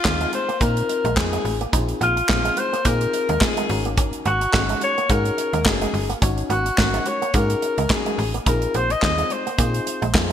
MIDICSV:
0, 0, Header, 1, 7, 480
1, 0, Start_track
1, 0, Key_signature, -5, "minor"
1, 0, Tempo, 560748
1, 1485, Time_signature, 4, 2, 24, 8
1, 8837, End_track
2, 0, Start_track
2, 0, Title_t, "Alto saxophone"
2, 0, Program_c, 0, 65
2, 0, Note_on_c, 0, 65, 92
2, 260, Note_off_c, 0, 65, 0
2, 295, Note_on_c, 0, 72, 98
2, 532, Note_on_c, 0, 70, 93
2, 545, Note_off_c, 0, 72, 0
2, 1001, Note_off_c, 0, 70, 0
2, 1006, Note_on_c, 0, 68, 85
2, 1354, Note_off_c, 0, 68, 0
2, 1735, Note_on_c, 0, 65, 94
2, 2213, Note_on_c, 0, 72, 103
2, 2226, Note_off_c, 0, 65, 0
2, 2453, Note_on_c, 0, 70, 98
2, 2465, Note_off_c, 0, 72, 0
2, 2931, Note_on_c, 0, 68, 83
2, 2943, Note_off_c, 0, 70, 0
2, 3302, Note_off_c, 0, 68, 0
2, 3654, Note_on_c, 0, 66, 98
2, 4096, Note_off_c, 0, 66, 0
2, 4135, Note_on_c, 0, 73, 104
2, 4378, Note_on_c, 0, 70, 91
2, 4391, Note_off_c, 0, 73, 0
2, 4853, Note_on_c, 0, 68, 82
2, 4865, Note_off_c, 0, 70, 0
2, 5223, Note_off_c, 0, 68, 0
2, 5573, Note_on_c, 0, 66, 86
2, 6056, Note_on_c, 0, 73, 93
2, 6069, Note_off_c, 0, 66, 0
2, 6293, Note_on_c, 0, 70, 94
2, 6306, Note_off_c, 0, 73, 0
2, 6769, Note_off_c, 0, 70, 0
2, 6775, Note_on_c, 0, 68, 85
2, 7119, Note_off_c, 0, 68, 0
2, 7257, Note_on_c, 0, 70, 92
2, 7497, Note_on_c, 0, 72, 106
2, 7510, Note_off_c, 0, 70, 0
2, 7630, Note_on_c, 0, 75, 96
2, 7642, Note_off_c, 0, 72, 0
2, 7730, Note_off_c, 0, 75, 0
2, 7739, Note_on_c, 0, 75, 99
2, 7976, Note_on_c, 0, 72, 89
2, 7989, Note_off_c, 0, 75, 0
2, 8837, Note_off_c, 0, 72, 0
2, 8837, End_track
3, 0, Start_track
3, 0, Title_t, "FM electric piano"
3, 0, Program_c, 1, 5
3, 37, Note_on_c, 1, 60, 64
3, 40, Note_on_c, 1, 63, 64
3, 43, Note_on_c, 1, 65, 62
3, 45, Note_on_c, 1, 68, 75
3, 424, Note_off_c, 1, 60, 0
3, 425, Note_off_c, 1, 63, 0
3, 427, Note_off_c, 1, 65, 0
3, 428, Note_off_c, 1, 68, 0
3, 518, Note_on_c, 1, 60, 79
3, 522, Note_on_c, 1, 63, 76
3, 524, Note_on_c, 1, 65, 74
3, 525, Note_on_c, 1, 70, 84
3, 904, Note_off_c, 1, 60, 0
3, 906, Note_off_c, 1, 63, 0
3, 908, Note_off_c, 1, 65, 0
3, 908, Note_off_c, 1, 70, 0
3, 998, Note_on_c, 1, 60, 68
3, 1000, Note_on_c, 1, 63, 67
3, 1002, Note_on_c, 1, 65, 62
3, 1004, Note_on_c, 1, 68, 76
3, 1384, Note_off_c, 1, 60, 0
3, 1385, Note_off_c, 1, 63, 0
3, 1386, Note_off_c, 1, 65, 0
3, 1387, Note_off_c, 1, 68, 0
3, 1477, Note_on_c, 1, 60, 85
3, 1478, Note_on_c, 1, 63, 80
3, 1481, Note_on_c, 1, 65, 73
3, 1485, Note_on_c, 1, 68, 96
3, 1864, Note_off_c, 1, 60, 0
3, 1864, Note_off_c, 1, 63, 0
3, 1866, Note_off_c, 1, 65, 0
3, 1868, Note_off_c, 1, 68, 0
3, 1959, Note_on_c, 1, 60, 70
3, 1961, Note_on_c, 1, 63, 61
3, 1962, Note_on_c, 1, 65, 59
3, 1965, Note_on_c, 1, 68, 78
3, 2345, Note_off_c, 1, 60, 0
3, 2346, Note_off_c, 1, 63, 0
3, 2346, Note_off_c, 1, 65, 0
3, 2348, Note_off_c, 1, 68, 0
3, 2440, Note_on_c, 1, 60, 87
3, 2442, Note_on_c, 1, 63, 76
3, 2445, Note_on_c, 1, 65, 74
3, 2446, Note_on_c, 1, 68, 89
3, 2825, Note_off_c, 1, 60, 0
3, 2827, Note_off_c, 1, 63, 0
3, 2828, Note_off_c, 1, 65, 0
3, 2829, Note_off_c, 1, 68, 0
3, 2920, Note_on_c, 1, 60, 67
3, 2922, Note_on_c, 1, 63, 66
3, 2925, Note_on_c, 1, 65, 63
3, 2928, Note_on_c, 1, 70, 72
3, 3154, Note_off_c, 1, 63, 0
3, 3159, Note_off_c, 1, 70, 0
3, 3163, Note_off_c, 1, 60, 0
3, 3163, Note_on_c, 1, 61, 80
3, 3164, Note_on_c, 1, 63, 72
3, 3165, Note_off_c, 1, 65, 0
3, 3165, Note_on_c, 1, 66, 73
3, 3169, Note_on_c, 1, 70, 84
3, 3751, Note_off_c, 1, 61, 0
3, 3752, Note_off_c, 1, 63, 0
3, 3753, Note_off_c, 1, 66, 0
3, 3755, Note_off_c, 1, 70, 0
3, 3880, Note_on_c, 1, 61, 69
3, 3884, Note_on_c, 1, 63, 63
3, 3886, Note_on_c, 1, 66, 62
3, 3888, Note_on_c, 1, 68, 75
3, 4266, Note_off_c, 1, 61, 0
3, 4267, Note_off_c, 1, 63, 0
3, 4268, Note_off_c, 1, 66, 0
3, 4269, Note_off_c, 1, 68, 0
3, 4363, Note_on_c, 1, 61, 82
3, 4365, Note_on_c, 1, 63, 74
3, 4367, Note_on_c, 1, 66, 74
3, 4368, Note_on_c, 1, 68, 89
3, 4747, Note_off_c, 1, 61, 0
3, 4748, Note_off_c, 1, 63, 0
3, 4749, Note_off_c, 1, 66, 0
3, 4749, Note_off_c, 1, 68, 0
3, 4838, Note_on_c, 1, 61, 73
3, 4840, Note_on_c, 1, 63, 64
3, 4842, Note_on_c, 1, 66, 65
3, 4846, Note_on_c, 1, 70, 78
3, 5224, Note_off_c, 1, 61, 0
3, 5226, Note_off_c, 1, 63, 0
3, 5227, Note_off_c, 1, 66, 0
3, 5228, Note_off_c, 1, 70, 0
3, 5322, Note_on_c, 1, 61, 85
3, 5324, Note_on_c, 1, 63, 79
3, 5326, Note_on_c, 1, 66, 82
3, 5329, Note_on_c, 1, 73, 93
3, 5706, Note_off_c, 1, 61, 0
3, 5707, Note_off_c, 1, 63, 0
3, 5708, Note_off_c, 1, 66, 0
3, 5710, Note_off_c, 1, 73, 0
3, 5800, Note_on_c, 1, 61, 67
3, 5803, Note_on_c, 1, 63, 63
3, 5805, Note_on_c, 1, 66, 58
3, 5807, Note_on_c, 1, 70, 75
3, 6185, Note_off_c, 1, 61, 0
3, 6187, Note_off_c, 1, 63, 0
3, 6188, Note_off_c, 1, 66, 0
3, 6189, Note_off_c, 1, 70, 0
3, 6282, Note_on_c, 1, 61, 76
3, 6283, Note_on_c, 1, 63, 76
3, 6286, Note_on_c, 1, 66, 72
3, 6287, Note_on_c, 1, 68, 91
3, 6666, Note_off_c, 1, 61, 0
3, 6667, Note_off_c, 1, 63, 0
3, 6668, Note_off_c, 1, 66, 0
3, 6669, Note_off_c, 1, 68, 0
3, 6760, Note_on_c, 1, 61, 67
3, 6761, Note_on_c, 1, 63, 61
3, 6764, Note_on_c, 1, 66, 60
3, 6767, Note_on_c, 1, 70, 71
3, 7146, Note_off_c, 1, 61, 0
3, 7146, Note_off_c, 1, 63, 0
3, 7148, Note_off_c, 1, 66, 0
3, 7149, Note_off_c, 1, 70, 0
3, 7244, Note_on_c, 1, 60, 70
3, 7246, Note_on_c, 1, 63, 65
3, 7246, Note_on_c, 1, 65, 68
3, 7250, Note_on_c, 1, 68, 82
3, 7628, Note_off_c, 1, 60, 0
3, 7628, Note_off_c, 1, 63, 0
3, 7629, Note_off_c, 1, 65, 0
3, 7630, Note_off_c, 1, 68, 0
3, 7720, Note_on_c, 1, 60, 66
3, 7721, Note_on_c, 1, 63, 64
3, 7724, Note_on_c, 1, 65, 62
3, 7727, Note_on_c, 1, 68, 72
3, 8105, Note_off_c, 1, 60, 0
3, 8106, Note_off_c, 1, 63, 0
3, 8107, Note_off_c, 1, 65, 0
3, 8109, Note_off_c, 1, 68, 0
3, 8200, Note_on_c, 1, 60, 80
3, 8200, Note_on_c, 1, 63, 74
3, 8204, Note_on_c, 1, 65, 77
3, 8206, Note_on_c, 1, 68, 90
3, 8586, Note_off_c, 1, 60, 0
3, 8586, Note_off_c, 1, 63, 0
3, 8588, Note_off_c, 1, 65, 0
3, 8588, Note_off_c, 1, 68, 0
3, 8681, Note_on_c, 1, 60, 80
3, 8682, Note_on_c, 1, 63, 80
3, 8684, Note_on_c, 1, 65, 74
3, 8686, Note_on_c, 1, 68, 88
3, 8837, Note_off_c, 1, 60, 0
3, 8837, Note_off_c, 1, 63, 0
3, 8837, Note_off_c, 1, 65, 0
3, 8837, Note_off_c, 1, 68, 0
3, 8837, End_track
4, 0, Start_track
4, 0, Title_t, "Clean electric guitar"
4, 0, Program_c, 2, 27
4, 176, Note_on_c, 2, 56, 69
4, 255, Note_off_c, 2, 56, 0
4, 414, Note_on_c, 2, 58, 67
4, 494, Note_off_c, 2, 58, 0
4, 521, Note_on_c, 2, 58, 67
4, 622, Note_off_c, 2, 58, 0
4, 896, Note_on_c, 2, 56, 70
4, 975, Note_off_c, 2, 56, 0
4, 1135, Note_on_c, 2, 56, 70
4, 1215, Note_off_c, 2, 56, 0
4, 1377, Note_on_c, 2, 58, 70
4, 1456, Note_off_c, 2, 58, 0
4, 1482, Note_on_c, 2, 63, 80
4, 1582, Note_off_c, 2, 63, 0
4, 1720, Note_on_c, 2, 58, 90
4, 1821, Note_off_c, 2, 58, 0
4, 2096, Note_on_c, 2, 56, 67
4, 2175, Note_off_c, 2, 56, 0
4, 2336, Note_on_c, 2, 58, 72
4, 2415, Note_off_c, 2, 58, 0
4, 2441, Note_on_c, 2, 58, 68
4, 2541, Note_off_c, 2, 58, 0
4, 2819, Note_on_c, 2, 56, 76
4, 2897, Note_off_c, 2, 56, 0
4, 3058, Note_on_c, 2, 56, 74
4, 3136, Note_off_c, 2, 56, 0
4, 3300, Note_on_c, 2, 58, 69
4, 3378, Note_off_c, 2, 58, 0
4, 3405, Note_on_c, 2, 61, 79
4, 3504, Note_off_c, 2, 61, 0
4, 3643, Note_on_c, 2, 58, 89
4, 3743, Note_off_c, 2, 58, 0
4, 4021, Note_on_c, 2, 56, 68
4, 4098, Note_off_c, 2, 56, 0
4, 4260, Note_on_c, 2, 58, 72
4, 4338, Note_off_c, 2, 58, 0
4, 4366, Note_on_c, 2, 58, 68
4, 4465, Note_off_c, 2, 58, 0
4, 4737, Note_on_c, 2, 56, 75
4, 4816, Note_off_c, 2, 56, 0
4, 4979, Note_on_c, 2, 56, 73
4, 5057, Note_off_c, 2, 56, 0
4, 5217, Note_on_c, 2, 58, 71
4, 5295, Note_off_c, 2, 58, 0
4, 5324, Note_on_c, 2, 61, 80
4, 5423, Note_off_c, 2, 61, 0
4, 5564, Note_on_c, 2, 58, 90
4, 5664, Note_off_c, 2, 58, 0
4, 5939, Note_on_c, 2, 56, 66
4, 6017, Note_off_c, 2, 56, 0
4, 6178, Note_on_c, 2, 58, 66
4, 6256, Note_off_c, 2, 58, 0
4, 6285, Note_on_c, 2, 58, 64
4, 6384, Note_off_c, 2, 58, 0
4, 6661, Note_on_c, 2, 56, 77
4, 6738, Note_off_c, 2, 56, 0
4, 6900, Note_on_c, 2, 56, 68
4, 6978, Note_off_c, 2, 56, 0
4, 7142, Note_on_c, 2, 58, 64
4, 7219, Note_off_c, 2, 58, 0
4, 7247, Note_on_c, 2, 63, 81
4, 7345, Note_off_c, 2, 63, 0
4, 7488, Note_on_c, 2, 58, 86
4, 7586, Note_off_c, 2, 58, 0
4, 7860, Note_on_c, 2, 56, 63
4, 7937, Note_off_c, 2, 56, 0
4, 8101, Note_on_c, 2, 58, 71
4, 8178, Note_off_c, 2, 58, 0
4, 8207, Note_on_c, 2, 58, 73
4, 8306, Note_off_c, 2, 58, 0
4, 8575, Note_on_c, 2, 56, 74
4, 8655, Note_off_c, 2, 56, 0
4, 8837, End_track
5, 0, Start_track
5, 0, Title_t, "FM bass"
5, 0, Program_c, 3, 39
5, 43, Note_on_c, 3, 39, 94
5, 228, Note_off_c, 3, 39, 0
5, 521, Note_on_c, 3, 46, 106
5, 706, Note_off_c, 3, 46, 0
5, 895, Note_on_c, 3, 34, 93
5, 999, Note_on_c, 3, 41, 89
5, 1012, Note_off_c, 3, 34, 0
5, 1185, Note_off_c, 3, 41, 0
5, 1240, Note_on_c, 3, 33, 90
5, 1425, Note_off_c, 3, 33, 0
5, 1481, Note_on_c, 3, 34, 100
5, 1666, Note_off_c, 3, 34, 0
5, 1720, Note_on_c, 3, 34, 104
5, 1906, Note_off_c, 3, 34, 0
5, 1964, Note_on_c, 3, 34, 88
5, 2148, Note_off_c, 3, 34, 0
5, 2441, Note_on_c, 3, 46, 96
5, 2626, Note_off_c, 3, 46, 0
5, 2818, Note_on_c, 3, 39, 87
5, 2899, Note_off_c, 3, 39, 0
5, 3164, Note_on_c, 3, 32, 101
5, 3532, Note_off_c, 3, 32, 0
5, 3644, Note_on_c, 3, 32, 104
5, 3828, Note_off_c, 3, 32, 0
5, 3885, Note_on_c, 3, 32, 94
5, 4069, Note_off_c, 3, 32, 0
5, 4362, Note_on_c, 3, 44, 95
5, 4547, Note_off_c, 3, 44, 0
5, 4736, Note_on_c, 3, 39, 87
5, 4841, Note_on_c, 3, 30, 93
5, 4854, Note_off_c, 3, 39, 0
5, 5026, Note_off_c, 3, 30, 0
5, 5081, Note_on_c, 3, 31, 96
5, 5266, Note_off_c, 3, 31, 0
5, 5325, Note_on_c, 3, 32, 115
5, 5508, Note_off_c, 3, 32, 0
5, 5561, Note_on_c, 3, 32, 97
5, 5746, Note_off_c, 3, 32, 0
5, 5807, Note_on_c, 3, 32, 99
5, 5990, Note_off_c, 3, 32, 0
5, 6283, Note_on_c, 3, 44, 104
5, 6468, Note_off_c, 3, 44, 0
5, 6659, Note_on_c, 3, 37, 85
5, 6740, Note_off_c, 3, 37, 0
5, 7005, Note_on_c, 3, 33, 98
5, 7189, Note_off_c, 3, 33, 0
5, 7244, Note_on_c, 3, 34, 105
5, 7428, Note_off_c, 3, 34, 0
5, 7488, Note_on_c, 3, 34, 89
5, 7670, Note_off_c, 3, 34, 0
5, 7727, Note_on_c, 3, 39, 94
5, 7910, Note_off_c, 3, 39, 0
5, 8206, Note_on_c, 3, 46, 95
5, 8389, Note_off_c, 3, 46, 0
5, 8579, Note_on_c, 3, 34, 96
5, 8683, Note_on_c, 3, 41, 90
5, 8696, Note_off_c, 3, 34, 0
5, 8837, Note_off_c, 3, 41, 0
5, 8837, End_track
6, 0, Start_track
6, 0, Title_t, "Muted clean electric guitar strokes"
6, 283, Note_on_c, 9, 29, 47
6, 369, Note_off_c, 9, 29, 0
6, 763, Note_on_c, 9, 29, 42
6, 848, Note_off_c, 9, 29, 0
6, 1242, Note_on_c, 9, 29, 47
6, 1328, Note_off_c, 9, 29, 0
6, 1855, Note_on_c, 9, 29, 48
6, 1941, Note_off_c, 9, 29, 0
6, 2204, Note_on_c, 9, 29, 47
6, 2289, Note_off_c, 9, 29, 0
6, 2683, Note_on_c, 9, 29, 43
6, 2768, Note_off_c, 9, 29, 0
6, 3166, Note_on_c, 9, 29, 44
6, 3252, Note_off_c, 9, 29, 0
6, 3779, Note_on_c, 9, 29, 49
6, 3864, Note_off_c, 9, 29, 0
6, 4127, Note_on_c, 9, 29, 44
6, 4213, Note_off_c, 9, 29, 0
6, 4603, Note_on_c, 9, 29, 43
6, 4688, Note_off_c, 9, 29, 0
6, 5083, Note_on_c, 9, 29, 45
6, 5168, Note_off_c, 9, 29, 0
6, 5700, Note_on_c, 9, 29, 47
6, 5785, Note_off_c, 9, 29, 0
6, 6045, Note_on_c, 9, 29, 46
6, 6131, Note_off_c, 9, 29, 0
6, 6526, Note_on_c, 9, 29, 44
6, 6611, Note_off_c, 9, 29, 0
6, 7009, Note_on_c, 9, 29, 48
6, 7094, Note_off_c, 9, 29, 0
6, 7622, Note_on_c, 9, 29, 46
6, 7708, Note_off_c, 9, 29, 0
6, 7966, Note_on_c, 9, 29, 44
6, 8051, Note_off_c, 9, 29, 0
6, 8444, Note_on_c, 9, 29, 44
6, 8530, Note_off_c, 9, 29, 0
6, 8837, End_track
7, 0, Start_track
7, 0, Title_t, "Drums"
7, 42, Note_on_c, 9, 39, 87
7, 44, Note_on_c, 9, 36, 104
7, 44, Note_on_c, 9, 38, 106
7, 127, Note_off_c, 9, 39, 0
7, 129, Note_off_c, 9, 38, 0
7, 130, Note_off_c, 9, 36, 0
7, 177, Note_on_c, 9, 42, 48
7, 262, Note_off_c, 9, 42, 0
7, 281, Note_on_c, 9, 42, 63
7, 366, Note_off_c, 9, 42, 0
7, 420, Note_on_c, 9, 42, 47
7, 505, Note_off_c, 9, 42, 0
7, 520, Note_on_c, 9, 42, 85
7, 521, Note_on_c, 9, 36, 112
7, 605, Note_off_c, 9, 42, 0
7, 607, Note_off_c, 9, 36, 0
7, 657, Note_on_c, 9, 42, 50
7, 743, Note_off_c, 9, 42, 0
7, 765, Note_on_c, 9, 42, 73
7, 850, Note_off_c, 9, 42, 0
7, 897, Note_on_c, 9, 42, 49
7, 982, Note_off_c, 9, 42, 0
7, 1000, Note_on_c, 9, 36, 119
7, 1001, Note_on_c, 9, 39, 95
7, 1003, Note_on_c, 9, 38, 120
7, 1085, Note_off_c, 9, 36, 0
7, 1086, Note_off_c, 9, 39, 0
7, 1088, Note_off_c, 9, 38, 0
7, 1137, Note_on_c, 9, 42, 55
7, 1223, Note_off_c, 9, 42, 0
7, 1242, Note_on_c, 9, 46, 69
7, 1328, Note_off_c, 9, 46, 0
7, 1377, Note_on_c, 9, 42, 51
7, 1462, Note_off_c, 9, 42, 0
7, 1482, Note_on_c, 9, 36, 117
7, 1482, Note_on_c, 9, 42, 101
7, 1568, Note_off_c, 9, 36, 0
7, 1568, Note_off_c, 9, 42, 0
7, 1614, Note_on_c, 9, 42, 49
7, 1699, Note_off_c, 9, 42, 0
7, 1723, Note_on_c, 9, 42, 71
7, 1808, Note_off_c, 9, 42, 0
7, 1857, Note_on_c, 9, 42, 55
7, 1943, Note_off_c, 9, 42, 0
7, 1960, Note_on_c, 9, 39, 85
7, 1962, Note_on_c, 9, 38, 100
7, 1965, Note_on_c, 9, 36, 95
7, 2046, Note_off_c, 9, 39, 0
7, 2048, Note_off_c, 9, 38, 0
7, 2051, Note_off_c, 9, 36, 0
7, 2098, Note_on_c, 9, 42, 52
7, 2183, Note_off_c, 9, 42, 0
7, 2198, Note_on_c, 9, 42, 65
7, 2284, Note_off_c, 9, 42, 0
7, 2341, Note_on_c, 9, 42, 45
7, 2426, Note_off_c, 9, 42, 0
7, 2439, Note_on_c, 9, 42, 96
7, 2442, Note_on_c, 9, 36, 107
7, 2524, Note_off_c, 9, 42, 0
7, 2527, Note_off_c, 9, 36, 0
7, 2576, Note_on_c, 9, 42, 48
7, 2661, Note_off_c, 9, 42, 0
7, 2684, Note_on_c, 9, 42, 71
7, 2769, Note_off_c, 9, 42, 0
7, 2815, Note_on_c, 9, 42, 52
7, 2901, Note_off_c, 9, 42, 0
7, 2920, Note_on_c, 9, 36, 116
7, 2921, Note_on_c, 9, 39, 89
7, 2923, Note_on_c, 9, 38, 112
7, 3006, Note_off_c, 9, 36, 0
7, 3007, Note_off_c, 9, 39, 0
7, 3009, Note_off_c, 9, 38, 0
7, 3056, Note_on_c, 9, 42, 54
7, 3141, Note_off_c, 9, 42, 0
7, 3162, Note_on_c, 9, 46, 67
7, 3248, Note_off_c, 9, 46, 0
7, 3296, Note_on_c, 9, 42, 52
7, 3381, Note_off_c, 9, 42, 0
7, 3402, Note_on_c, 9, 42, 102
7, 3403, Note_on_c, 9, 36, 122
7, 3487, Note_off_c, 9, 42, 0
7, 3489, Note_off_c, 9, 36, 0
7, 3534, Note_on_c, 9, 42, 48
7, 3619, Note_off_c, 9, 42, 0
7, 3642, Note_on_c, 9, 42, 70
7, 3728, Note_off_c, 9, 42, 0
7, 3777, Note_on_c, 9, 42, 55
7, 3863, Note_off_c, 9, 42, 0
7, 3881, Note_on_c, 9, 39, 77
7, 3883, Note_on_c, 9, 38, 105
7, 3885, Note_on_c, 9, 36, 104
7, 3966, Note_off_c, 9, 39, 0
7, 3968, Note_off_c, 9, 38, 0
7, 3970, Note_off_c, 9, 36, 0
7, 4016, Note_on_c, 9, 42, 50
7, 4102, Note_off_c, 9, 42, 0
7, 4120, Note_on_c, 9, 42, 64
7, 4205, Note_off_c, 9, 42, 0
7, 4261, Note_on_c, 9, 42, 45
7, 4347, Note_off_c, 9, 42, 0
7, 4361, Note_on_c, 9, 42, 87
7, 4362, Note_on_c, 9, 36, 112
7, 4446, Note_off_c, 9, 42, 0
7, 4448, Note_off_c, 9, 36, 0
7, 4497, Note_on_c, 9, 42, 50
7, 4583, Note_off_c, 9, 42, 0
7, 4606, Note_on_c, 9, 42, 70
7, 4692, Note_off_c, 9, 42, 0
7, 4736, Note_on_c, 9, 42, 48
7, 4822, Note_off_c, 9, 42, 0
7, 4841, Note_on_c, 9, 36, 117
7, 4842, Note_on_c, 9, 39, 98
7, 4844, Note_on_c, 9, 38, 121
7, 4927, Note_off_c, 9, 36, 0
7, 4928, Note_off_c, 9, 39, 0
7, 4930, Note_off_c, 9, 38, 0
7, 4978, Note_on_c, 9, 42, 52
7, 5063, Note_off_c, 9, 42, 0
7, 5085, Note_on_c, 9, 46, 72
7, 5170, Note_off_c, 9, 46, 0
7, 5218, Note_on_c, 9, 42, 47
7, 5304, Note_off_c, 9, 42, 0
7, 5323, Note_on_c, 9, 42, 99
7, 5324, Note_on_c, 9, 36, 122
7, 5409, Note_off_c, 9, 42, 0
7, 5410, Note_off_c, 9, 36, 0
7, 5457, Note_on_c, 9, 42, 46
7, 5543, Note_off_c, 9, 42, 0
7, 5565, Note_on_c, 9, 42, 77
7, 5651, Note_off_c, 9, 42, 0
7, 5700, Note_on_c, 9, 42, 54
7, 5785, Note_off_c, 9, 42, 0
7, 5804, Note_on_c, 9, 39, 87
7, 5806, Note_on_c, 9, 38, 100
7, 5807, Note_on_c, 9, 36, 99
7, 5890, Note_off_c, 9, 39, 0
7, 5892, Note_off_c, 9, 38, 0
7, 5893, Note_off_c, 9, 36, 0
7, 5939, Note_on_c, 9, 42, 52
7, 6025, Note_off_c, 9, 42, 0
7, 6040, Note_on_c, 9, 42, 66
7, 6126, Note_off_c, 9, 42, 0
7, 6182, Note_on_c, 9, 42, 48
7, 6267, Note_off_c, 9, 42, 0
7, 6281, Note_on_c, 9, 42, 92
7, 6284, Note_on_c, 9, 36, 107
7, 6366, Note_off_c, 9, 42, 0
7, 6369, Note_off_c, 9, 36, 0
7, 6418, Note_on_c, 9, 42, 52
7, 6504, Note_off_c, 9, 42, 0
7, 6526, Note_on_c, 9, 42, 68
7, 6612, Note_off_c, 9, 42, 0
7, 6658, Note_on_c, 9, 42, 51
7, 6744, Note_off_c, 9, 42, 0
7, 6762, Note_on_c, 9, 36, 118
7, 6763, Note_on_c, 9, 39, 88
7, 6765, Note_on_c, 9, 38, 110
7, 6848, Note_off_c, 9, 36, 0
7, 6849, Note_off_c, 9, 39, 0
7, 6851, Note_off_c, 9, 38, 0
7, 6900, Note_on_c, 9, 42, 54
7, 6985, Note_off_c, 9, 42, 0
7, 7007, Note_on_c, 9, 46, 74
7, 7092, Note_off_c, 9, 46, 0
7, 7140, Note_on_c, 9, 42, 47
7, 7225, Note_off_c, 9, 42, 0
7, 7245, Note_on_c, 9, 36, 117
7, 7246, Note_on_c, 9, 42, 96
7, 7331, Note_off_c, 9, 36, 0
7, 7331, Note_off_c, 9, 42, 0
7, 7377, Note_on_c, 9, 42, 48
7, 7463, Note_off_c, 9, 42, 0
7, 7484, Note_on_c, 9, 42, 76
7, 7570, Note_off_c, 9, 42, 0
7, 7620, Note_on_c, 9, 42, 56
7, 7706, Note_off_c, 9, 42, 0
7, 7725, Note_on_c, 9, 39, 77
7, 7727, Note_on_c, 9, 38, 96
7, 7728, Note_on_c, 9, 36, 100
7, 7810, Note_off_c, 9, 39, 0
7, 7812, Note_off_c, 9, 38, 0
7, 7814, Note_off_c, 9, 36, 0
7, 7860, Note_on_c, 9, 42, 48
7, 7946, Note_off_c, 9, 42, 0
7, 7963, Note_on_c, 9, 42, 63
7, 8048, Note_off_c, 9, 42, 0
7, 8105, Note_on_c, 9, 42, 48
7, 8190, Note_off_c, 9, 42, 0
7, 8204, Note_on_c, 9, 42, 97
7, 8205, Note_on_c, 9, 36, 110
7, 8290, Note_off_c, 9, 42, 0
7, 8291, Note_off_c, 9, 36, 0
7, 8341, Note_on_c, 9, 42, 49
7, 8426, Note_off_c, 9, 42, 0
7, 8447, Note_on_c, 9, 42, 69
7, 8533, Note_off_c, 9, 42, 0
7, 8579, Note_on_c, 9, 42, 50
7, 8665, Note_off_c, 9, 42, 0
7, 8683, Note_on_c, 9, 36, 112
7, 8686, Note_on_c, 9, 39, 92
7, 8688, Note_on_c, 9, 38, 120
7, 8769, Note_off_c, 9, 36, 0
7, 8772, Note_off_c, 9, 39, 0
7, 8774, Note_off_c, 9, 38, 0
7, 8837, End_track
0, 0, End_of_file